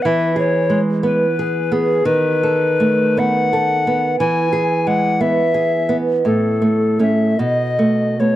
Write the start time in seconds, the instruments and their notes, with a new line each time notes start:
0.02 nylon-string guitar E3, recorder E5 F#5
0.36 nylon-string guitar G#4, recorder C#5
0.70 nylon-string guitar G#3
1.03 nylon-string guitar B3, recorder B4
1.39 nylon-string guitar G#4
1.72 nylon-string guitar B3, recorder G#4
2.05 nylon-string guitar D#3, recorder B4
2.43 nylon-string guitar A4
2.80 nylon-string guitar A3
3.17 nylon-string guitar B3, recorder F#5
3.53 nylon-string guitar A4
3.87 nylon-string guitar B3
4.19 nylon-string guitar E3, recorder G#5
4.53 nylon-string guitar G#4
4.87 nylon-string guitar G#3, recorder F#5
5.21 nylon-string guitar B3, recorder E5
5.54 nylon-string guitar G#4
5.89 nylon-string guitar B3
6.25 nylon-string guitar A2, recorder A4
6.62 nylon-string guitar A3
6.99 nylon-string guitar A3 C#4, recorder E5
7.39 nylon-string guitar B2, recorder D#5
7.79 nylon-string guitar A3
8.20 nylon-string guitar A3 B3, recorder C#5